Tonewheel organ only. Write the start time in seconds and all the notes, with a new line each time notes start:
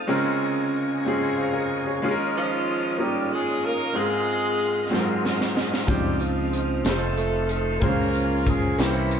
Already playing: D#5
0.09 C#3 G#5 A#5 C#6
2.03 C#5 D#5 F5 D#6
3.95 A#4 C6
4.94 G#3 D#5 C6
5.89 C4 D#5
6.84 A4 D#5 C6
7.80 C#4 A#4 G#5
8.78 C5 E5 A#5 C#6